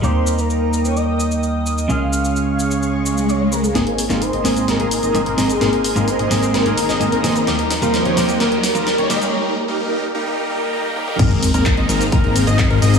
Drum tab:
CC |----------------|----------------|----------------|----------------|
RD |----------------|----------------|----------------|----------------|
HH |----------------|----------------|xxoxxxoxxxoxxxox|xxoxxxoxxxoxxxox|
SH |x-xxx-xxx-xxx-xx|x-xxx-xxx-xxx-xx|x-xxx-xxx-xxx-xx|x-xxx-xxx-xxx-xx|
CP |----------------|----------------|----------------|----------------|
SD |----------------|----------------|o--o--o-o-----o-|o-----o-o--o--o-|
T1 |----------------|----------------|----------------|----------------|
T2 |----------------|----------------|----------------|----------------|
BD |----------------|----------------|----------------|----------------|

CC |----------------|----------------|x---------------|
RD |----------------|----------------|--x---x---x---x-|
HH |xxoxxxoxxxoxxxox|----------------|xxoxxxoxxxoxxxox|
SH |x-xxx-xxx-xxx-xx|----------------|x-xxx-xxx-xxx-xx|
CP |----------------|----------------|----x-------x---|
SD |o-o-o-o-o-o-o-o-|----------------|----------------|
T1 |----------------|--------------o-|----------------|
T2 |----------------|---------------o|----------------|
BD |----------------|----------------|o---o---o---o---|